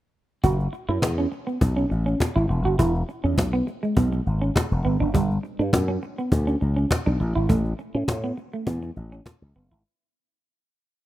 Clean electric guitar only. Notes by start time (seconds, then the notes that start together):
0.44 F#4
0.73 muted clean electric guitar stroke
0.89 E4
1.18 C#4
1.32 muted clean electric guitar stroke
1.47 B3
1.77 C#4
1.90 muted clean electric guitar stroke
2.06 C#4
2.36 E4
2.49 muted clean electric guitar stroke
2.65 F#4
2.79 E4
3.09 muted clean electric guitar stroke
3.24 C#4
3.53 B3
3.67 muted clean electric guitar stroke
3.83 G#3
3.97 B3
4.12 muted clean electric guitar stroke
4.42 C#4
4.55 muted clean electric guitar stroke
4.85 B3
5.00 D4
5.14 G3
5.43 muted clean electric guitar stroke
5.59 D4
5.88 C#4
6.03 muted clean electric guitar stroke
6.18 B3
6.47 C#4
6.61 muted clean electric guitar stroke
6.76 C#4
7.06 D4
7.20 muted clean electric guitar stroke
7.35 E4
7.49 A3
7.79 muted clean electric guitar stroke
7.95 C#4
8.24 B3
8.37 muted clean electric guitar stroke
8.53 A3
8.67 B3
8.83 muted clean electric guitar stroke
9.12 C#4
9.26 muted clean electric guitar stroke
9.56 B3
9.71 E4